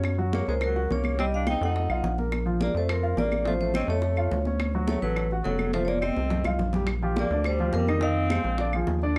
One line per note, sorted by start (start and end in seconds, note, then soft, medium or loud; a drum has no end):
0.00 0.42 F#2 medium
0.00 0.14 C#4 medium
0.00 0.14 C#5 medium
0.00 high bongo medium
0.04 high conga soft
0.04 claves medium
0.18 0.42 F#3 medium
0.18 0.42 F#4 medium
0.18 high conga soft
0.33 0.46 A#3 medium
0.33 0.47 C#5 medium
0.33 high bongo soft
0.33 high conga medium
0.47 0.87 C#2 medium
0.47 0.54 G#3 medium
0.47 0.71 A#3 medium
0.47 0.71 A#4 medium
0.47 0.55 C5 medium
0.47 high bongo soft
0.47 high conga soft
0.61 0.89 F#3 medium
0.61 0.92 A#4 medium
0.61 high bongo medium
0.61 high conga soft
0.61 claves medium
0.76 0.88 F#4 medium
0.76 0.88 F#5 medium
0.76 high bongo soft
0.76 high conga soft
0.90 1.56 C2 medium
0.90 1.17 A#3 medium
0.90 1.14 C#4 medium
0.90 1.14 C#5 medium
0.90 1.20 C#5 medium
0.90 high bongo soft
0.90 low bongo medium
0.90 high conga medium
1.04 high bongo soft
1.04 high conga medium
1.04 claves medium
1.19 1.42 G3 medium
1.19 1.26 C4 medium
1.19 1.42 G4 medium
1.19 1.26 D#5 medium
1.19 high bongo medium
1.19 high conga soft
1.32 1.47 D4 medium
1.32 1.48 F5 medium
1.32 high conga soft
1.47 1.59 C4 medium
1.47 1.62 D#4 medium
1.47 1.59 C5 medium
1.47 1.62 G5 medium
1.47 high bongo soft
1.47 high conga medium
1.47 claves medium
1.61 1.88 F2 medium
1.61 1.85 A3 medium
1.61 2.16 D#4 medium
1.61 1.85 A4 medium
1.61 2.15 F#5 medium
1.61 high bongo soft
1.61 high conga soft
1.76 high bongo medium
1.76 high conga soft
1.89 2.03 B1 medium
1.89 2.14 F4 medium
1.89 2.14 F5 medium
1.89 high bongo soft
1.89 high conga soft
1.89 claves medium
2.03 2.69 A#1 medium
2.03 high bongo soft
2.03 low bongo medium
2.03 high conga soft
2.18 2.42 A#3 medium
2.18 2.42 A#4 medium
2.18 high bongo soft
2.18 high conga medium
2.32 high bongo medium
2.32 high conga soft
2.32 claves medium
2.46 2.69 F3 medium
2.46 2.69 F4 medium
2.46 high conga soft
2.61 2.74 A#3 medium
2.61 2.76 D5 medium
2.61 high bongo soft
2.61 high conga medium
2.74 3.14 F2 medium
2.74 2.98 A3 medium
2.74 2.89 A3 medium
2.74 2.99 A4 medium
2.74 2.89 C5 medium
2.74 high bongo soft
2.74 high conga soft
2.89 3.17 F3 medium
2.89 3.16 A#4 medium
2.89 high bongo medium
2.89 high conga soft
2.89 claves medium
3.03 3.15 F4 medium
3.03 3.15 F5 medium
3.03 high bongo soft
3.03 high conga soft
3.17 3.83 A1 medium
3.17 3.41 A#3 medium
3.17 3.45 A#3 medium
3.17 3.41 A#4 medium
3.17 3.47 D5 medium
3.17 high bongo soft
3.17 low bongo medium
3.17 high conga medium
3.31 high bongo soft
3.31 high conga medium
3.31 claves medium
3.45 3.69 F3 medium
3.45 3.53 A3 medium
3.45 3.70 F4 medium
3.45 3.54 C5 medium
3.45 high bongo medium
3.45 high conga soft
3.61 3.74 A3 medium
3.61 3.74 C5 medium
3.61 high conga soft
3.74 3.88 C4 medium
3.74 3.86 C#4 medium
3.74 3.86 C#5 medium
3.74 3.88 D#5 medium
3.74 high bongo soft
3.74 high conga medium
3.74 claves medium
3.88 4.28 F2 medium
3.88 4.12 A3 medium
3.88 4.42 A3 medium
3.88 4.13 A4 medium
3.88 4.42 C#5 medium
3.88 high bongo soft
3.88 high conga soft
4.02 high bongo medium
4.02 high conga soft
4.17 4.41 F4 medium
4.17 4.41 F5 medium
4.17 high bongo soft
4.17 high conga soft
4.17 claves medium
4.31 4.97 D2 medium
4.31 high bongo soft
4.31 low bongo medium
4.31 high conga soft
4.45 4.69 C#4 medium
4.45 4.70 C#5 medium
4.45 high bongo soft
4.45 high conga medium
4.59 high bongo medium
4.59 high conga soft
4.59 claves medium
4.74 4.98 F#3 medium
4.74 4.98 F#4 medium
4.74 high conga soft
4.88 5.01 A3 medium
4.88 5.02 C#5 medium
4.88 high bongo medium
4.88 high conga medium
5.02 5.42 A1 medium
5.02 5.29 F#3 medium
5.02 5.27 A3 medium
5.02 5.27 A4 medium
5.02 5.29 B4 medium
5.02 high bongo soft
5.02 high conga soft
5.16 high bongo medium
5.16 high conga soft
5.16 claves medium
5.31 5.43 F#4 medium
5.31 5.44 F#5 medium
5.31 high bongo soft
5.31 high conga soft
5.43 6.11 F1 medium
5.43 5.71 F#3 medium
5.43 5.70 C#4 medium
5.43 5.74 A4 medium
5.43 5.70 C#5 medium
5.43 high bongo soft
5.43 low bongo medium
5.43 high conga medium
5.59 high bongo soft
5.59 high conga medium
5.59 claves medium
5.73 5.98 F3 medium
5.73 5.83 A3 medium
5.73 5.98 F4 medium
5.73 5.85 C5 medium
5.73 high bongo medium
5.73 high conga medium
5.85 5.87 A3 medium
5.85 6.01 A#3 medium
5.85 5.88 C#5 medium
5.85 6.01 D5 medium
5.85 high conga medium
6.01 6.55 C4 medium
6.01 6.15 C4 medium
6.01 6.15 C5 medium
6.01 6.55 D#5 medium
6.01 high bongo soft
6.01 high conga medium
6.01 claves medium
6.16 6.43 C2 medium
6.16 6.40 A3 medium
6.16 6.40 A4 medium
6.16 high bongo soft
6.16 high conga medium
6.30 high bongo medium
6.30 low conga medium
6.44 6.58 C2 medium
6.44 6.69 F4 medium
6.44 6.69 F5 medium
6.44 high bongo medium
6.44 low conga medium
6.44 claves medium
6.59 7.25 A#1 medium
6.59 high bongo medium
6.59 low conga medium
6.73 6.86 G3 medium
6.73 6.86 G4 medium
6.73 low bongo medium
6.73 low conga medium
6.87 high bongo medium
6.87 high conga soft
6.87 claves medium
7.03 7.26 F3 medium
7.03 7.26 F4 medium
7.03 7.26 G4 medium
7.03 high conga soft
7.16 7.45 A#3 medium
7.16 7.47 D5 medium
7.16 high bongo medium
7.16 high conga medium
7.30 7.70 D2 medium
7.30 7.55 D3 medium
7.30 7.55 D4 medium
7.30 7.55 D5 medium
7.30 high bongo soft
7.30 high conga soft
7.44 7.73 G3 medium
7.44 7.75 C5 medium
7.44 high bongo medium
7.44 high conga soft
7.44 claves medium
7.59 7.83 F3 medium
7.59 7.83 F4 medium
7.59 7.83 G4 medium
7.59 high bongo soft
7.59 high conga soft
7.73 8.39 F2 medium
7.73 8.02 G3 medium
7.73 8.03 A#4 medium
7.73 high bongo soft
7.73 low bongo medium
7.73 high conga medium
7.87 8.00 D#3 medium
7.87 8.00 D#4 medium
7.87 8.00 D#5 medium
7.87 high bongo soft
7.87 high conga medium
7.87 claves medium
8.01 8.26 D#3 medium
8.01 8.84 C4 medium
8.01 8.26 D#4 medium
8.01 8.26 D#5 medium
8.01 8.84 F5 medium
8.01 high bongo medium
8.01 high conga soft
8.16 high conga soft
8.30 8.55 G#3 medium
8.30 8.55 G#4 medium
8.30 8.55 C5 medium
8.30 high bongo medium
8.30 high conga medium
8.30 claves medium
8.44 8.84 A#1 medium
8.44 high bongo soft
8.44 high conga soft
8.58 8.71 D3 medium
8.58 8.71 D4 medium
8.58 8.72 D5 medium
8.58 high bongo medium
8.58 high conga soft
8.73 8.98 F3 medium
8.73 8.98 F4 medium
8.73 8.98 G#4 medium
8.73 high bongo soft
8.73 high conga soft
8.73 claves medium
8.87 9.19 D#2 medium
8.87 high bongo soft
8.87 low bongo medium
8.87 high conga soft
9.02 9.19 D3 medium
9.02 9.19 D4 medium
9.02 9.19 D5 medium
9.02 high bongo soft